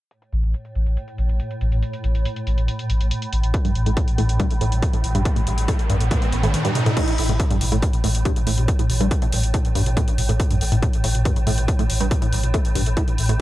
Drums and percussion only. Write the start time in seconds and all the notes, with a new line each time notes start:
0.11 closed hi-hat
0.22 closed hi-hat
0.33 closed hi-hat
0.43 closed hi-hat
0.54 closed hi-hat
0.65 closed hi-hat
0.75 closed hi-hat
0.86 closed hi-hat
0.97 closed hi-hat
1.08 closed hi-hat
1.18 closed hi-hat
1.29 closed hi-hat
1.40 closed hi-hat
1.51 closed hi-hat
1.61 closed hi-hat
1.72 closed hi-hat
1.83 closed hi-hat
1.93 closed hi-hat
2.04 closed hi-hat
2.15 closed hi-hat
2.25 closed hi-hat
2.36 closed hi-hat
2.47 closed hi-hat
2.58 closed hi-hat
2.68 closed hi-hat
2.79 closed hi-hat
2.90 closed hi-hat
3.01 closed hi-hat
3.11 closed hi-hat
3.22 closed hi-hat
3.33 closed hi-hat
3.43 closed hi-hat
3.54 kick, closed hi-hat
3.65 closed hi-hat
3.75 closed hi-hat
3.86 closed hi-hat
3.97 kick, closed hi-hat
4.08 closed hi-hat
4.18 closed hi-hat
4.29 closed hi-hat
4.40 kick, closed hi-hat
4.51 closed hi-hat
4.61 closed hi-hat
4.72 closed hi-hat
4.82 kick, closed hi-hat
4.93 closed hi-hat
5.04 closed hi-hat
5.15 closed hi-hat
5.25 kick, closed hi-hat
5.36 closed hi-hat
5.47 closed hi-hat
5.58 closed hi-hat
5.68 kick, closed hi-hat
5.79 closed hi-hat
5.90 closed hi-hat
6.01 closed hi-hat
6.11 kick, closed hi-hat, high tom
6.22 closed hi-hat, high tom
6.32 closed hi-hat
6.43 closed hi-hat, mid tom
6.54 closed hi-hat, mid tom
6.65 closed hi-hat
6.75 closed hi-hat, mid tom
6.86 closed hi-hat, mid tom
6.97 kick, closed hi-hat, mid tom, crash
7.08 closed hi-hat
7.18 open hi-hat
7.29 closed hi-hat, mid tom
7.40 kick, closed hi-hat
7.51 closed hi-hat
7.61 mid tom, open hi-hat
7.72 closed hi-hat
7.82 kick, closed hi-hat
7.93 closed hi-hat, mid tom
8.04 open hi-hat
8.15 closed hi-hat
8.25 kick, closed hi-hat, mid tom
8.36 closed hi-hat
8.47 open hi-hat
8.58 closed hi-hat, mid tom
8.68 kick, closed hi-hat
8.79 closed hi-hat
8.90 mid tom, open hi-hat
9.01 closed hi-hat
9.11 kick, closed hi-hat
9.22 closed hi-hat, mid tom
9.32 open hi-hat
9.43 closed hi-hat
9.54 kick, closed hi-hat, mid tom
9.65 closed hi-hat
9.75 open hi-hat
9.86 closed hi-hat, mid tom
9.97 kick, closed hi-hat
10.08 closed hi-hat
10.18 mid tom, open hi-hat
10.29 closed hi-hat
10.40 kick, closed hi-hat
10.51 closed hi-hat, mid tom
10.61 open hi-hat
10.72 closed hi-hat
10.83 kick, closed hi-hat, mid tom
10.93 closed hi-hat
11.04 open hi-hat
11.15 closed hi-hat, mid tom
11.25 kick, closed hi-hat
11.36 closed hi-hat
11.47 mid tom, open hi-hat
11.58 closed hi-hat
11.68 kick, closed hi-hat
11.79 closed hi-hat, mid tom
11.90 open hi-hat
12.01 closed hi-hat
12.11 kick, closed hi-hat, mid tom
12.22 closed hi-hat
12.33 open hi-hat
12.43 closed hi-hat, mid tom
12.54 kick, closed hi-hat
12.65 closed hi-hat
12.75 mid tom, open hi-hat
12.86 closed hi-hat
12.97 kick, closed hi-hat
13.08 closed hi-hat, mid tom
13.18 open hi-hat
13.29 closed hi-hat